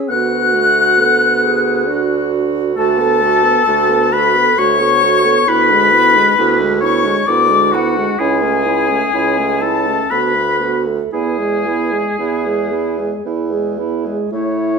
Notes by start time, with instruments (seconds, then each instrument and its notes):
Already playing: french horn C#4, clarinet G#4
0.09 bassoon D2, french horn B3, clarinet F#4, oboe F#5, flute F#6
0.54 french horn A3
0.98 french horn B3, clarinet A4
1.44 clarinet G#4
1.87 french horn D4, clarinet F#4
2.76 bassoon D2, french horn A3, clarinet F#4, oboe A4, flute A5
2.98 french horn B3, clarinet A4
3.21 french horn A3, clarinet F#4
3.43 french horn B3, clarinet A4
3.66 bassoon D2, french horn A3, clarinet F#4
3.89 french horn B3, clarinet A4
4.12 french horn A3, clarinet F#4, oboe B4, flute B5
4.36 french horn B3, clarinet A4
4.58 bassoon D2, french horn A3, clarinet F#4, oboe C#5, flute C#6
4.80 french horn B3, clarinet A4
5.03 french horn A3, clarinet F#4
5.25 french horn B3, clarinet A4
5.46 bassoon D2, french horn B3, clarinet E4, oboe B4, flute B5
5.70 french horn G#3, clarinet D4
5.93 french horn B3, clarinet E4
6.15 french horn G#3, clarinet D4
6.37 bassoon D2, french horn B3, clarinet E4
6.60 french horn G#3, clarinet D4
6.81 french horn B3, clarinet E4, oboe C#5, flute C#6
7.04 french horn G#3, clarinet D4
7.26 bassoon D2, french horn B3, clarinet E4, oboe D5, flute D6
7.49 french horn G#3, clarinet D4
7.72 french horn B3, clarinet E4, oboe F#4, flute F#5
7.95 french horn G#3, clarinet D4
8.19 bassoon C#2, french horn C#4, clarinet E4, oboe G#4, flute G#5
8.41 french horn A3, clarinet C#4
8.65 french horn C#4, clarinet E4
8.88 french horn A3, clarinet C#4
9.12 bassoon C#2, french horn C#4, clarinet E4
9.37 french horn A3, clarinet C#4
9.61 french horn C#4, clarinet E4, oboe A4, flute A5
9.86 french horn A3, clarinet C#4
10.10 bassoon D2, french horn B3, clarinet F#4, oboe B4, flute B5
10.35 french horn A3, clarinet A4
10.61 french horn B3, clarinet F#4
10.86 french horn A3, clarinet A4
11.12 bassoon E2, french horn B3, clarinet E4, oboe G#4, flute G#5
11.38 french horn G#3, clarinet G#4
11.66 french horn B3, clarinet E4
11.93 french horn G#3, clarinet G#4
12.18 bassoon E2, french horn B3, clarinet E4
12.44 french horn G#3, clarinet G#4
12.71 french horn B3, clarinet E4
12.98 french horn G#3, clarinet G#4
13.25 bassoon E2, french horn B3, clarinet E4
13.52 french horn G#3, clarinet G#4
13.78 french horn B3, clarinet E4
14.05 french horn G#3, clarinet G#4
14.32 bassoon A2, clarinet A3, french horn E4, flute C#5, oboe C#5